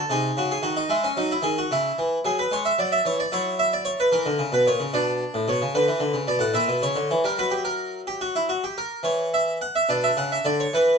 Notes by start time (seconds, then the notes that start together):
Already playing: A4
0.10 C3 D#4 G#4
0.37 C#3 F#4
0.51 G#4
0.62 D#3 F#4
0.77 D#4
0.89 G#3 E4
1.04 C#4
1.17 F#3 D#4
1.32 E4
1.42 D#3 G#4
1.58 F#4
1.71 C#3 E4
1.99 E3
2.25 F#3 G#4
2.39 B4
2.51 G#3 C#5
2.65 E5
2.79 F#3 D5
2.92 E5
3.05 E3 C#5
3.20 D5
3.32 F#3 E4 C#5
3.59 E5
3.73 D5
3.85 C#5
4.00 B4
4.12 E3 A#4
4.26 D3
4.39 C#3
4.52 B2 B4
4.67 A#2 C#5
4.80 C#3
4.93 B2 D4 D5
5.34 A2
5.48 B2 C#5
5.62 C#3
5.75 D3 B4
5.88 E3
6.00 D3
6.14 C#3
6.28 B2 D5
6.39 A2 F#5
6.54 A#2 E4 E5
6.68 B2
6.82 C#3 C#5
6.96 D3
7.11 E3
7.24 G3 A#4
7.39 F#3 B4
7.51 G4
7.65 A#4
8.07 G4
8.21 F#4
8.36 E4
8.49 F#4
8.64 G4
8.78 A#4
9.03 E3 C#5
9.34 E5
9.61 F#5
9.75 E5
9.89 B2 D4 D5
10.04 E5
10.17 C#3 F#5
10.32 E5
10.45 D3 D5
10.60 C#5
10.74 E3 B4